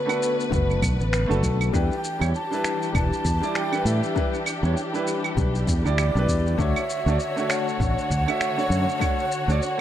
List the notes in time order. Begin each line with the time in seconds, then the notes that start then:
Already playing: D3 B3 B4
0.06 A3 D4 F#4 B4, claves, shaker
0.23 shaker
0.40 shaker
0.49 F#1 A3 D4 F#4 B4, kick, shaker
0.70 shaker
0.82 B1, kick, claves, shaker
1.00 A1, shaker
1.13 finger snap, shaker
1.27 F#1 A3 D4 F#4 A4, shaker
1.43 B1, kick, shaker
1.61 claves, shaker
1.72 E2 E3 G3 D4 E4 G4 B4 G5, kick, shaker
1.92 shaker
2.04 shaker
2.19 E2 G3 D4 E4 C#5, claves, shaker
2.35 A5, shaker
2.50 G3 D4 E4 B4, shaker
2.64 finger snap, shaker
2.82 shaker
2.92 E1 G3 D4 E4 B4 A5, kick, claves, shaker
3.13 shaker
3.25 E2, kick, shaker
3.40 G3 D4 E4 D5, shaker
3.55 G5, finger snap, shaker
3.71 G3 D4 E4 B4, claves, shaker
3.85 A2 E5, shaker
4.03 shaker
4.15 G3 D4 E4 B4, kick, shaker
4.34 shaker
4.46 claves, shaker
4.62 E2 G3 D4 E4 C#5, shaker
4.77 shaker
4.92 G3 D4 E4 B4, shaker
5.07 shaker
5.24 claves, shaker
5.36 B1 G3 D4 E4 B4, kick, shaker
5.55 shaker
5.67 E2, kick, shaker
5.83 D2 G3 D4 E4 D5, shaker
5.98 D5, finger snap, claves, shaker
6.15 B1 G3 D4 E4 B4, shaker
6.28 E2, kick, shaker
6.47 shaker
6.58 D2 D3 A3 D4 F#4 C#5 E5, kick, shaker
6.76 claves, shaker
6.90 shaker
7.06 D2 A3 D4 F#4 D5, shaker
7.20 E5, shaker
7.36 A3 D4 F#4 C#5, shaker
7.50 F#5, finger snap, claves, shaker
7.68 shaker
7.80 A1 A3 D4 F#4 C#5, kick, shaker
7.98 shaker
8.10 D2, kick, shaker
8.26 A3 D4 F#4 E5, claves, shaker
8.41 finger snap, shaker
8.57 A3 D4 F#4 C#5, shaker
8.70 F#2, shaker
8.89 shaker
8.99 A3 D4 F#4 C#5, kick, claves, shaker
9.19 shaker
9.32 shaker
9.47 D2 A3 D4 F#4 D5, shaker
9.62 shaker
9.78 A3